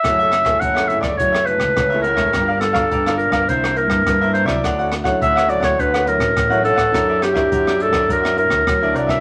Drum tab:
HH |xxxxxxxxxxxxxxxx|x-x-xxxxxxxxxxx-|xxxxxxxxxxxxxxxx|x-x-xxxxxxxxxxx-|
SD |r-rr-r-r-r-rr--r|r-rr-r-r-r-rr--r|r-rr-r-r-r-rr--r|r-rr-r-r-r-rr--r|
BD |o--oo--oo--oo--o|o--oo--oo--oo--o|o--oo--oo--oo--o|o--oo--oo--oo--o|